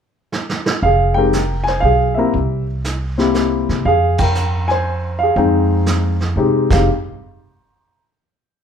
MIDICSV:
0, 0, Header, 1, 4, 480
1, 0, Start_track
1, 0, Key_signature, -4, "minor"
1, 0, Tempo, 503356
1, 795, Time_signature, 3, 2, 24, 8
1, 8235, End_track
2, 0, Start_track
2, 0, Title_t, "Grand piano"
2, 0, Program_c, 0, 0
2, 790, Note_on_c, 0, 77, 84
2, 815, Note_on_c, 0, 68, 61
2, 1091, Note_on_c, 0, 79, 94
2, 1106, Note_off_c, 0, 68, 0
2, 1111, Note_on_c, 0, 56, 59
2, 1118, Note_on_c, 0, 60, 53
2, 1124, Note_on_c, 0, 63, 52
2, 1125, Note_off_c, 0, 77, 0
2, 1125, Note_on_c, 0, 70, 64
2, 1131, Note_on_c, 0, 67, 64
2, 1256, Note_off_c, 0, 56, 0
2, 1260, Note_off_c, 0, 60, 0
2, 1263, Note_off_c, 0, 63, 0
2, 1266, Note_off_c, 0, 67, 0
2, 1550, Note_off_c, 0, 79, 0
2, 1560, Note_on_c, 0, 80, 87
2, 1569, Note_off_c, 0, 70, 0
2, 1607, Note_on_c, 0, 72, 63
2, 1720, Note_on_c, 0, 77, 86
2, 1742, Note_off_c, 0, 80, 0
2, 1750, Note_off_c, 0, 72, 0
2, 1764, Note_on_c, 0, 68, 65
2, 2045, Note_on_c, 0, 76, 68
2, 2060, Note_off_c, 0, 68, 0
2, 2071, Note_off_c, 0, 77, 0
2, 2073, Note_on_c, 0, 60, 56
2, 2076, Note_on_c, 0, 58, 58
2, 2082, Note_on_c, 0, 64, 55
2, 2085, Note_on_c, 0, 67, 50
2, 2085, Note_on_c, 0, 70, 70
2, 2218, Note_off_c, 0, 60, 0
2, 2219, Note_off_c, 0, 58, 0
2, 2223, Note_off_c, 0, 64, 0
2, 2224, Note_off_c, 0, 70, 0
2, 2508, Note_off_c, 0, 76, 0
2, 2529, Note_off_c, 0, 67, 0
2, 3030, Note_on_c, 0, 60, 59
2, 3033, Note_on_c, 0, 58, 63
2, 3043, Note_on_c, 0, 64, 59
2, 3044, Note_on_c, 0, 67, 75
2, 3642, Note_off_c, 0, 60, 0
2, 3644, Note_off_c, 0, 58, 0
2, 3649, Note_off_c, 0, 64, 0
2, 3649, Note_off_c, 0, 67, 0
2, 3677, Note_on_c, 0, 77, 87
2, 3695, Note_on_c, 0, 68, 71
2, 3988, Note_off_c, 0, 68, 0
2, 3997, Note_on_c, 0, 79, 85
2, 4010, Note_off_c, 0, 77, 0
2, 4027, Note_on_c, 0, 70, 64
2, 4461, Note_on_c, 0, 80, 92
2, 4462, Note_off_c, 0, 70, 0
2, 4494, Note_off_c, 0, 79, 0
2, 4494, Note_on_c, 0, 72, 76
2, 4935, Note_off_c, 0, 72, 0
2, 4946, Note_on_c, 0, 77, 80
2, 4967, Note_off_c, 0, 80, 0
2, 4991, Note_on_c, 0, 68, 61
2, 5109, Note_on_c, 0, 56, 59
2, 5116, Note_on_c, 0, 60, 55
2, 5122, Note_on_c, 0, 63, 59
2, 5124, Note_on_c, 0, 79, 65
2, 5852, Note_off_c, 0, 56, 0
2, 5856, Note_off_c, 0, 60, 0
2, 5859, Note_off_c, 0, 63, 0
2, 5860, Note_off_c, 0, 79, 0
2, 6034, Note_off_c, 0, 77, 0
2, 6056, Note_off_c, 0, 68, 0
2, 6071, Note_on_c, 0, 56, 61
2, 6075, Note_on_c, 0, 63, 62
2, 6076, Note_on_c, 0, 60, 53
2, 6087, Note_on_c, 0, 67, 71
2, 6365, Note_off_c, 0, 56, 0
2, 6367, Note_off_c, 0, 60, 0
2, 6367, Note_off_c, 0, 63, 0
2, 6373, Note_off_c, 0, 67, 0
2, 6403, Note_on_c, 0, 77, 65
2, 6404, Note_on_c, 0, 56, 53
2, 6408, Note_on_c, 0, 60, 50
2, 6411, Note_on_c, 0, 63, 54
2, 6415, Note_on_c, 0, 67, 62
2, 6545, Note_off_c, 0, 56, 0
2, 6547, Note_off_c, 0, 60, 0
2, 6548, Note_off_c, 0, 63, 0
2, 6549, Note_off_c, 0, 77, 0
2, 6550, Note_off_c, 0, 67, 0
2, 8235, End_track
3, 0, Start_track
3, 0, Title_t, "Upright bass"
3, 0, Program_c, 1, 32
3, 786, Note_on_c, 1, 29, 80
3, 1714, Note_off_c, 1, 29, 0
3, 1740, Note_on_c, 1, 35, 74
3, 2195, Note_off_c, 1, 35, 0
3, 2232, Note_on_c, 1, 36, 69
3, 3480, Note_off_c, 1, 36, 0
3, 3519, Note_on_c, 1, 48, 64
3, 3667, Note_off_c, 1, 48, 0
3, 3672, Note_on_c, 1, 41, 74
3, 5079, Note_off_c, 1, 41, 0
3, 5111, Note_on_c, 1, 41, 78
3, 6037, Note_off_c, 1, 41, 0
3, 6061, Note_on_c, 1, 48, 70
3, 6369, Note_off_c, 1, 48, 0
3, 6392, Note_on_c, 1, 29, 79
3, 6543, Note_off_c, 1, 29, 0
3, 8235, End_track
4, 0, Start_track
4, 0, Title_t, "Drums"
4, 309, Note_on_c, 9, 38, 59
4, 404, Note_off_c, 9, 38, 0
4, 471, Note_on_c, 9, 38, 70
4, 566, Note_off_c, 9, 38, 0
4, 628, Note_on_c, 9, 38, 84
4, 723, Note_off_c, 9, 38, 0
4, 790, Note_on_c, 9, 36, 29
4, 794, Note_on_c, 9, 25, 49
4, 885, Note_off_c, 9, 36, 0
4, 1267, Note_on_c, 9, 44, 60
4, 1270, Note_on_c, 9, 38, 57
4, 1362, Note_off_c, 9, 44, 0
4, 1365, Note_off_c, 9, 38, 0
4, 1590, Note_on_c, 9, 38, 34
4, 1686, Note_off_c, 9, 38, 0
4, 2229, Note_on_c, 9, 36, 32
4, 2230, Note_off_c, 9, 25, 0
4, 2230, Note_on_c, 9, 25, 44
4, 2324, Note_off_c, 9, 36, 0
4, 2712, Note_on_c, 9, 44, 56
4, 2714, Note_on_c, 9, 38, 56
4, 2807, Note_off_c, 9, 44, 0
4, 2810, Note_off_c, 9, 38, 0
4, 3034, Note_on_c, 9, 38, 35
4, 3129, Note_off_c, 9, 38, 0
4, 3186, Note_on_c, 9, 44, 54
4, 3189, Note_on_c, 9, 38, 48
4, 3281, Note_off_c, 9, 44, 0
4, 3284, Note_off_c, 9, 38, 0
4, 3519, Note_on_c, 9, 38, 38
4, 3614, Note_off_c, 9, 38, 0
4, 3672, Note_off_c, 9, 25, 0
4, 3672, Note_on_c, 9, 25, 38
4, 3674, Note_on_c, 9, 36, 31
4, 3770, Note_off_c, 9, 36, 0
4, 3988, Note_on_c, 9, 51, 71
4, 3996, Note_on_c, 9, 36, 81
4, 4083, Note_off_c, 9, 51, 0
4, 4091, Note_off_c, 9, 36, 0
4, 4148, Note_on_c, 9, 44, 58
4, 4243, Note_off_c, 9, 44, 0
4, 4476, Note_on_c, 9, 38, 37
4, 4571, Note_off_c, 9, 38, 0
4, 5114, Note_on_c, 9, 36, 33
4, 5116, Note_off_c, 9, 25, 0
4, 5116, Note_on_c, 9, 25, 46
4, 5210, Note_off_c, 9, 36, 0
4, 5589, Note_on_c, 9, 44, 51
4, 5592, Note_on_c, 9, 38, 55
4, 5685, Note_off_c, 9, 44, 0
4, 5688, Note_off_c, 9, 38, 0
4, 5914, Note_on_c, 9, 38, 37
4, 6010, Note_off_c, 9, 38, 0
4, 6394, Note_on_c, 9, 36, 92
4, 6395, Note_on_c, 9, 38, 79
4, 6395, Note_on_c, 9, 49, 74
4, 6400, Note_off_c, 9, 25, 0
4, 6490, Note_off_c, 9, 36, 0
4, 6490, Note_off_c, 9, 38, 0
4, 6490, Note_off_c, 9, 49, 0
4, 8235, End_track
0, 0, End_of_file